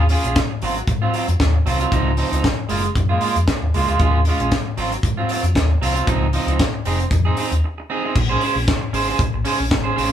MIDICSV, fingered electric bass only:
0, 0, Header, 1, 2, 480
1, 0, Start_track
1, 0, Key_signature, -5, "minor"
1, 0, Tempo, 519481
1, 1772, Time_signature, 4, 2, 24, 8
1, 9352, End_track
2, 0, Start_track
2, 0, Title_t, "Fingered electric bass"
2, 0, Program_c, 0, 33
2, 0, Note_on_c, 0, 39, 101
2, 120, Note_off_c, 0, 39, 0
2, 223, Note_on_c, 0, 34, 81
2, 304, Note_off_c, 0, 34, 0
2, 576, Note_on_c, 0, 32, 91
2, 749, Note_off_c, 0, 32, 0
2, 813, Note_on_c, 0, 44, 97
2, 987, Note_off_c, 0, 44, 0
2, 1184, Note_on_c, 0, 41, 97
2, 1264, Note_off_c, 0, 41, 0
2, 1294, Note_on_c, 0, 39, 88
2, 1468, Note_off_c, 0, 39, 0
2, 1529, Note_on_c, 0, 36, 89
2, 1705, Note_off_c, 0, 36, 0
2, 1778, Note_on_c, 0, 37, 100
2, 2042, Note_off_c, 0, 37, 0
2, 2143, Note_on_c, 0, 37, 95
2, 2224, Note_off_c, 0, 37, 0
2, 2491, Note_on_c, 0, 30, 76
2, 2666, Note_off_c, 0, 30, 0
2, 2735, Note_on_c, 0, 42, 98
2, 2908, Note_off_c, 0, 42, 0
2, 3103, Note_on_c, 0, 41, 82
2, 3184, Note_off_c, 0, 41, 0
2, 3346, Note_on_c, 0, 39, 84
2, 3426, Note_off_c, 0, 39, 0
2, 3459, Note_on_c, 0, 37, 85
2, 3549, Note_off_c, 0, 37, 0
2, 3585, Note_on_c, 0, 38, 75
2, 3665, Note_off_c, 0, 38, 0
2, 3693, Note_on_c, 0, 39, 108
2, 3959, Note_off_c, 0, 39, 0
2, 4062, Note_on_c, 0, 34, 91
2, 4143, Note_off_c, 0, 34, 0
2, 4413, Note_on_c, 0, 32, 93
2, 4587, Note_off_c, 0, 32, 0
2, 4652, Note_on_c, 0, 44, 89
2, 4826, Note_off_c, 0, 44, 0
2, 5020, Note_on_c, 0, 41, 96
2, 5136, Note_off_c, 0, 41, 0
2, 5136, Note_on_c, 0, 39, 82
2, 5309, Note_off_c, 0, 39, 0
2, 5376, Note_on_c, 0, 36, 88
2, 5549, Note_off_c, 0, 36, 0
2, 5614, Note_on_c, 0, 37, 95
2, 5880, Note_off_c, 0, 37, 0
2, 5976, Note_on_c, 0, 37, 84
2, 6059, Note_off_c, 0, 37, 0
2, 6331, Note_on_c, 0, 29, 89
2, 6506, Note_off_c, 0, 29, 0
2, 6572, Note_on_c, 0, 41, 101
2, 6747, Note_off_c, 0, 41, 0
2, 6943, Note_on_c, 0, 39, 103
2, 7024, Note_off_c, 0, 39, 0
2, 7536, Note_on_c, 0, 34, 107
2, 7709, Note_off_c, 0, 34, 0
2, 7906, Note_on_c, 0, 34, 107
2, 7985, Note_off_c, 0, 34, 0
2, 8249, Note_on_c, 0, 32, 90
2, 8424, Note_off_c, 0, 32, 0
2, 8629, Note_on_c, 0, 34, 96
2, 8707, Note_off_c, 0, 34, 0
2, 8869, Note_on_c, 0, 34, 81
2, 8978, Note_off_c, 0, 34, 0
2, 8978, Note_on_c, 0, 32, 86
2, 9149, Note_off_c, 0, 32, 0
2, 9221, Note_on_c, 0, 33, 87
2, 9352, Note_off_c, 0, 33, 0
2, 9352, End_track
0, 0, End_of_file